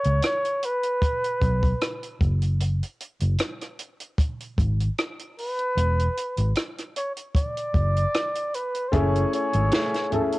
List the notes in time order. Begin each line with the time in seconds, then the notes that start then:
Already playing: C#5
0.04 C#2, closed hi-hat
0.22 C#5, cross-stick, closed hi-hat
0.45 closed hi-hat
0.63 B4, closed hi-hat
0.83 closed hi-hat
1.02 kick, closed hi-hat
1.24 closed hi-hat
1.42 B1, kick, closed hi-hat
1.63 kick, closed hi-hat
1.81 cross-stick, closed hi-hat
2.03 closed hi-hat
2.21 F#1, kick, closed hi-hat
2.42 closed hi-hat
2.60 closed hi-hat
2.83 closed hi-hat
3.01 closed hi-hat
3.20 F#1, closed hi-hat
3.38 cross-stick, closed hi-hat
3.61 cross-stick, closed hi-hat
3.79 closed hi-hat
4.00 closed hi-hat
4.18 kick, closed hi-hat
4.40 closed hi-hat
4.58 G#1, kick, closed hi-hat
4.80 closed hi-hat
4.98 cross-stick, closed hi-hat
5.19 closed hi-hat
5.38 B4, open hi-hat
5.59 closed hi-hat
5.77 E1, closed hi-hat
5.99 closed hi-hat
6.17 closed hi-hat
6.37 G#1, closed hi-hat
6.55 cross-stick, closed hi-hat
6.78 cross-stick, closed hi-hat
6.96 C#5, closed hi-hat
7.17 closed hi-hat
7.35 D5, kick, closed hi-hat
7.57 closed hi-hat
7.74 F#1, kick, closed hi-hat
7.96 closed hi-hat
8.14 cross-stick, closed hi-hat
8.35 closed hi-hat
8.54 B4, closed hi-hat
8.75 closed hi-hat
8.88 A3 C5
8.93 F#1 C#4 E4 G#4 C#5, kick, closed hi-hat, muted conga
9.15 closed hi-hat
9.33 C#5, closed hi-hat
9.53 G#1, closed hi-hat
9.71 A3 E4 G#4, snare, closed hi-hat, high conga
9.94 snare, closed hi-hat
10.10 A3 C#4 E4 G#4 A4, closed hi-hat, low conga
10.32 A4, closed hi-hat